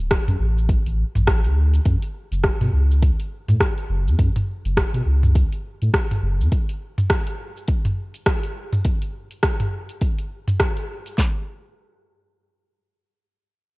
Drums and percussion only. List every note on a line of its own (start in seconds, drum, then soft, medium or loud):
0.11 kick loud
0.11 cross-stick loud
0.11 open hi-hat medium
0.11 shaker medium
0.28 mid tom medium
0.28 open hi-hat soft
0.28 shaker soft
0.58 shaker medium
0.69 kick loud
0.69 open hi-hat medium
0.69 shaker medium
0.87 open hi-hat soft
0.87 shaker soft
1.15 mid tom medium
1.15 open hi-hat soft
1.15 shaker medium
1.27 kick loud
1.27 cross-stick loud
1.27 open hi-hat medium
1.27 shaker medium
1.44 open hi-hat soft
1.44 shaker soft
1.74 open hi-hat soft
1.74 shaker medium
1.85 kick loud
1.85 open hi-hat medium
1.85 shaker medium
2.03 open hi-hat soft
2.03 shaker soft
2.32 open hi-hat soft
2.32 shaker medium
2.44 kick loud
2.44 cross-stick loud
2.44 open hi-hat medium
2.44 shaker medium
2.61 mid tom medium
2.61 open hi-hat soft
2.61 shaker soft
2.91 shaker medium
3.02 kick loud
3.02 open hi-hat medium
3.02 shaker medium
3.20 open hi-hat soft
3.20 shaker soft
3.48 mid tom medium
3.48 open hi-hat soft
3.48 shaker medium
3.61 kick loud
3.61 cross-stick loud
3.61 open hi-hat medium
3.61 shaker medium
3.78 open hi-hat soft
3.78 shaker soft
4.08 shaker medium
4.19 kick loud
4.19 open hi-hat medium
4.19 shaker medium
4.36 mid tom medium
4.36 open hi-hat soft
4.36 shaker soft
4.65 open hi-hat soft
4.65 shaker medium
4.77 kick loud
4.77 cross-stick loud
4.77 open hi-hat medium
4.77 shaker medium
4.94 open hi-hat soft
4.94 shaker soft
5.23 mid tom medium
5.23 shaker medium
5.35 kick loud
5.35 open hi-hat medium
5.35 shaker medium
5.52 open hi-hat soft
5.52 shaker soft
5.82 open hi-hat soft
5.82 shaker medium
5.94 kick loud
5.94 cross-stick loud
5.94 open hi-hat medium
5.94 shaker medium
6.11 mid tom medium
6.11 open hi-hat soft
6.11 shaker soft
6.41 shaker medium
6.52 kick loud
6.52 open hi-hat medium
6.52 shaker soft
6.69 open hi-hat soft
6.69 shaker soft
6.98 mid tom medium
6.98 open hi-hat soft
6.98 shaker medium
7.10 kick loud
7.10 cross-stick loud
7.10 open hi-hat medium
7.10 shaker medium
7.27 open hi-hat soft
7.27 shaker soft
7.57 shaker medium
7.68 kick loud
7.68 open hi-hat medium
7.68 shaker medium
7.85 mid tom medium
7.85 open hi-hat soft
7.85 shaker soft
8.14 open hi-hat soft
8.14 shaker medium
8.26 kick loud
8.26 cross-stick loud
8.26 open hi-hat medium
8.26 shaker medium
8.43 open hi-hat soft
8.43 shaker soft
8.73 mid tom medium
8.73 shaker medium
8.85 kick loud
8.85 open hi-hat medium
8.85 shaker soft
9.02 open hi-hat soft
9.02 shaker soft
9.31 open hi-hat soft
9.31 shaker medium
9.43 kick loud
9.43 cross-stick loud
9.43 open hi-hat medium
9.43 shaker medium
9.60 mid tom medium
9.60 open hi-hat soft
9.60 shaker soft
9.89 open hi-hat soft
9.89 shaker medium
10.01 kick loud
10.01 open hi-hat medium
10.01 shaker medium
10.18 open hi-hat soft
10.18 shaker soft
10.47 mid tom medium
10.47 open hi-hat soft
10.47 shaker medium
10.60 kick loud
10.60 cross-stick loud
10.60 open hi-hat medium
10.60 shaker medium
10.77 open hi-hat soft
10.77 shaker soft
11.06 open hi-hat soft
11.06 shaker medium
11.18 kick loud
11.18 snare loud
11.18 clap medium